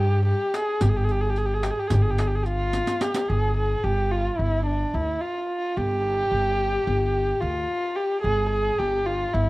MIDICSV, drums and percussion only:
0, 0, Header, 1, 3, 480
1, 0, Start_track
1, 0, Tempo, 550964
1, 708, Time_signature, 9, 3, 24, 8
1, 8273, End_track
2, 0, Start_track
2, 0, Title_t, "Darbuka"
2, 471, Note_on_c, 9, 63, 65
2, 558, Note_off_c, 9, 63, 0
2, 705, Note_on_c, 9, 64, 83
2, 792, Note_off_c, 9, 64, 0
2, 947, Note_on_c, 9, 62, 28
2, 1034, Note_off_c, 9, 62, 0
2, 1186, Note_on_c, 9, 62, 26
2, 1273, Note_off_c, 9, 62, 0
2, 1422, Note_on_c, 9, 63, 70
2, 1509, Note_off_c, 9, 63, 0
2, 1658, Note_on_c, 9, 64, 86
2, 1745, Note_off_c, 9, 64, 0
2, 1907, Note_on_c, 9, 63, 68
2, 1994, Note_off_c, 9, 63, 0
2, 2382, Note_on_c, 9, 63, 46
2, 2469, Note_off_c, 9, 63, 0
2, 2503, Note_on_c, 9, 62, 62
2, 2590, Note_off_c, 9, 62, 0
2, 2625, Note_on_c, 9, 63, 67
2, 2712, Note_off_c, 9, 63, 0
2, 2753, Note_on_c, 9, 62, 77
2, 2840, Note_off_c, 9, 62, 0
2, 8273, End_track
3, 0, Start_track
3, 0, Title_t, "Riq"
3, 470, Note_on_c, 9, 54, 46
3, 558, Note_off_c, 9, 54, 0
3, 704, Note_on_c, 9, 54, 56
3, 791, Note_off_c, 9, 54, 0
3, 948, Note_on_c, 9, 54, 18
3, 1035, Note_off_c, 9, 54, 0
3, 1186, Note_on_c, 9, 54, 17
3, 1273, Note_off_c, 9, 54, 0
3, 1421, Note_on_c, 9, 54, 48
3, 1508, Note_off_c, 9, 54, 0
3, 1658, Note_on_c, 9, 54, 62
3, 1745, Note_off_c, 9, 54, 0
3, 1903, Note_on_c, 9, 54, 49
3, 1990, Note_off_c, 9, 54, 0
3, 2142, Note_on_c, 9, 54, 17
3, 2229, Note_off_c, 9, 54, 0
3, 2379, Note_on_c, 9, 54, 55
3, 2466, Note_off_c, 9, 54, 0
3, 2501, Note_on_c, 9, 54, 60
3, 2588, Note_off_c, 9, 54, 0
3, 2620, Note_on_c, 9, 54, 66
3, 2707, Note_off_c, 9, 54, 0
3, 2738, Note_on_c, 9, 54, 79
3, 2825, Note_off_c, 9, 54, 0
3, 8273, End_track
0, 0, End_of_file